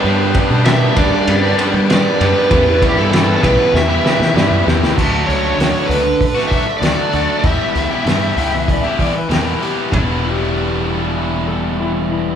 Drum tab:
CC |----------------|----------------|x---------------|----------------|
RD |--x-x-x-x-x-x-x-|x-x-x-x---------|----------------|----------------|
HH |----------------|----------------|--o-o-o-o-o-o-o-|o-o-o-o-o-o-o-o-|
SD |----o-------o---|----o---o-ooo-oo|----o----o--o---|----o-------o---|
FT |----------------|----------------|----------------|----------------|
BD |--o---o---------|o-o---o---------|o-------o-o-----|o-------o-o-----|

CC |----------------|
RD |b---------------|
HH |----------------|
SD |----------------|
FT |o---------------|
BD |o---------------|